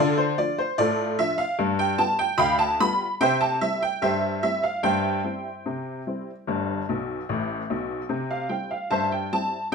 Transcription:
honky-tonk piano
Already playing: D3
0.00 F4 A4 D5
0.18 C5
0.38 F3 D4 F4 D5
0.58 C5
0.78 A2 F4 A4 D5
1.19 F3 D4 F4 E5
1.38 F5
1.59 G2
1.79 G5
1.98 G3 B3 F4 A5
2.19 G5
2.38 D2 F5 G5 B5
2.59 A5
2.80 G3 B3 F4 B5
3.21 C3 C5 E5 G5
3.41 A5
3.61 G3 C4 E4 E5
3.82 G5
4.02 G2 G4 C5 E5
4.43 G3 C4 E4 E5
4.63 F5
4.83 G2 C5 E5 G5
5.24 G3 C4 E4
5.66 C3
6.07 G3 C4 E4
6.47 G1 G2
6.89 B1 B2
7.29 A1 A2
7.70 B1 B2
8.09 C3
8.31 F5
8.49 G3 C4 E4 G5
8.71 F5
8.91 G2 C5 E5 A5
9.12 G5
9.33 G3 C4 E4 A5

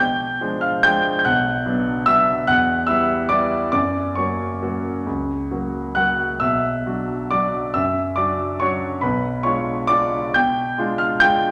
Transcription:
grand piano
Already playing: B2 G5 G6
0.41 F3 G#3 D4
0.61 F5 F6
0.83 F3 G#3 D4 G5 G6
1.19 G6
1.25 B1 F#5 F#6
1.66 F#3 B3 D4
2.06 F#3 B3 D4 E5 E6
2.47 E2 F#5 F#6
2.87 G3 B3 E4 E5 E6
3.29 G3 B3 E4 D5 D6
3.72 F#2 D5 D6
4.15 F#3 A#3 F#4 C#5 C#6
4.62 F#3 A#3 F#4
5.06 C#2
5.51 F#3 A#3 F#4
5.95 F#3 A#3 F#4 F#5 F#6
6.40 B1 E5 E6
6.86 F#3 D4 F#4
7.31 F#3 D4 F#4 D5 D6
7.74 F#2 E5 E6
8.16 F#3 D4 F#4 D5 D6
8.60 F#3 D4 F#4 C#5 C#6
9.01 B1 B4 B5
9.43 G#3 D4 F4 C#5 C#6
9.87 G#3 D4 F4 D5 D6
10.34 B2 G5 G6
10.78 G#3 D4 F4
10.98 F5 F6
11.20 G#3 D4 F4 G5 G6

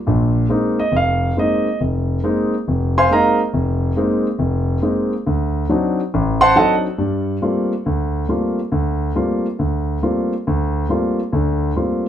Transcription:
grand piano
0.07 A#1 A#2
0.49 G#3 A#3 C4 D#4
0.79 D#5
0.92 F1
0.96 F5
1.37 G#3 A#3 C4 D#4 D#5
1.81 F1
2.24 G#3 A#3 C4 D#4
2.68 F1
2.98 C5 F5 G#5 C6
3.10 G#3 A#3 C4 D#4 A#4 D#5 F5 A#5
3.54 F1
3.96 G#3 A#3 C4 D#4
4.39 F1
4.82 G#3 A#3 C4 D#4
5.27 D2
5.69 F#3 C4 D4 D#4
6.14 A1
6.41 C5 F#5 A5 C6
6.55 F#3 C4 D4 D#4 A4 D#5 F#5 A5
6.98 G2 G3
7.42 G3 A3 A#3 C4 F4
7.86 D2
8.29 G3 A3 A#3 C4 F4
8.72 D2
9.15 G3 A3 A#3 C4 F4
9.59 D2
10.02 G3 A3 A#3 C4 F4
10.47 D2
10.89 G3 A3 A#3 C4 F4
11.33 D2 D3
11.76 G3 A3 A#3 C4 F4

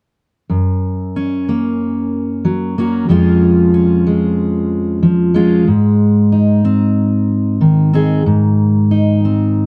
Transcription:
steel-string acoustic guitar
0.50 F#2
1.16 C#4
1.49 A#3
2.45 F#3
2.78 A#3 C#4 F#4
3.08 F2 F3 G#3 C#4 F4
3.74 C#4
4.07 G#3
5.03 F3
5.34 G#3 C#4 F4
5.68 G#2
6.32 D#4
6.65 C4
7.61 D#3
7.93 C4 D#4 G#4
8.26 G#2
8.91 D#4
9.25 C4

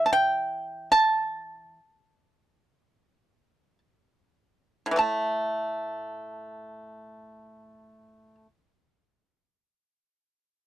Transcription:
pipa
Already playing: E3
0.06 A5
0.13 G5
0.92 A5
4.86 A2
4.91 E3
4.96 A3 A5

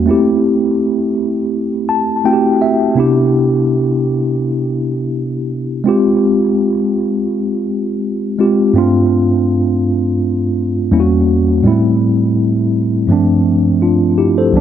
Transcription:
tine electric piano
0.06 A3 C4 E4
0.11 G4
1.89 A5
2.24 A3 C4 E4 F#4 G5
2.33 G4
2.62 E5
2.95 C3 B3 D4 E4
3.00 G4
5.84 G#3 C4 F4
5.89 G4
8.38 G#3 C4 F4 G4
8.74 G2 A3 C4 D4
8.78 F4
10.91 E2 G3 A#3 C#4 E4
11.00 F#4
11.63 A2 G3 G#3 C4
11.67 E4
11.72 A3
13.07 G2 F3 A3 C4
13.12 D4
13.82 D4 F4
14.18 E4 G4
14.38 A4 C5
14.52 C2 E3 G3 B3
14.57 D4

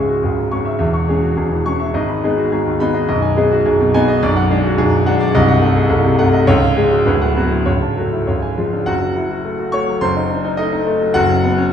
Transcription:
grand piano
Already playing: C#1 C#2 G#3 C#4 G#4 E5 C#6
0.09 F#4
0.23 C#1 C#2 G#4
0.37 G#2
0.51 G#3 C#4 C#6
0.65 E5
0.79 E1 E2 E5
0.94 C#6
1.08 G#3 C#4 G#4
1.22 F#4
1.37 E1 E2 G#4
1.51 E3
1.66 G#3 C#4 C#6
1.80 E5
1.94 G#1 G#2 D#5
2.09 B5
2.24 G#3 B3 D#4 G#4
2.37 F#4
2.52 G#1 G#2 G#4
2.66 D#2
2.80 G#3 B3 D#4 B5
2.94 D#5
3.09 B0 B1 D#5
3.22 G#5
3.37 G#3 B3 D#4 G#4
3.52 F#4
3.66 B0 B1 G#4
3.80 B2
3.94 G#3 B3 D#4 G#5
4.08 D#5
4.22 B0 B1 D5
4.36 F#5
4.51 G#3 D4 G#4
4.65 F#4
4.78 B0 B1 G#4
4.92 F#2
5.06 G#3 D4 F#5
5.20 D5
5.34 C1 C2 D#5
5.48 F#5
5.62 A3 D#4 A4
5.75 G#4
5.89 C1 C2 A4
6.04 C3
6.19 A3 D#4 F#5
6.33 D#5
6.47 C#1 C#2 C#5
6.62 F5
6.76 G#3 C#4 G#4
6.92 F#4
7.06 D1 D2 B4
7.22 F#5
7.36 F#3 B3 F#4
7.51 E4
7.66 C#1 C#2 C#5
7.82 A5
7.97 F#3 A3 F#4
8.12 E4
8.27 C#1 C#2 C#5
8.42 G#5
8.57 F3 G#3 F4
8.73 D4
8.86 F#1 F#2 F#4 F#5
9.02 F#4
9.16 E4
9.31 F#4
9.45 A3
9.59 F#4
9.72 A3 C#5 C#6
9.88 F#3
10.01 F#1 F#2 C5 C6
10.16 D#4
10.31 D4
10.44 D#4
10.57 A3 D#4 D#5
10.72 D#4
10.87 A3
11.01 F#3
11.14 F#1 F#2 F#4 F#5
11.29 C#4
11.44 B3
11.58 C#4

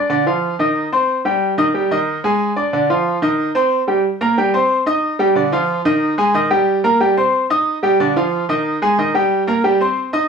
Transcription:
grand piano
0.10 D3 D4 D5
0.26 F3 F4 F5
0.59 D#3 D#4 D#5
0.92 C4 C5 C6
1.25 G3 G4 G5
1.58 D#3 D#4 D#5
1.74 G3 G4 G5
1.91 D#3 D#4 D#5
2.24 G#3 G#4 G#5
2.56 D4 D5 D6
2.73 D3 D4 D5
2.90 F3 F4 F5
3.22 D#3 D#4 D#5
3.55 C4 C5 C6
3.88 G3 G4 G5
4.21 A#3 A#4 A#5
4.38 G3 G4 G5
4.54 C4 C5 C6
4.87 D#4 D#5 D#6
5.19 G3 G4 G5
5.36 D3 D4 D5
5.52 F3 F4 F5
5.85 D#3 D#4 D#5
6.18 G#3 G#4 G#5
6.34 D#3 D#4 D#5
6.50 G3 G4 G5
6.84 A#3 A#4 A#5
7.00 G3 G4 G5
7.17 C4 C5 C6
7.50 D#4 D#5 D#6
7.83 G3 G4 G5
8.00 D3 D4 D5
8.16 F3 F4 F5
8.49 D#3 D#4 D#5
8.82 G#3 G#4 G#5
8.98 D#3 D#4 D#5
9.14 G3 G4 G5
9.47 A#3 A#4 A#5
9.64 G3 G4 G5
9.80 C4 C5 C6
10.13 D#4 D#5 D#6

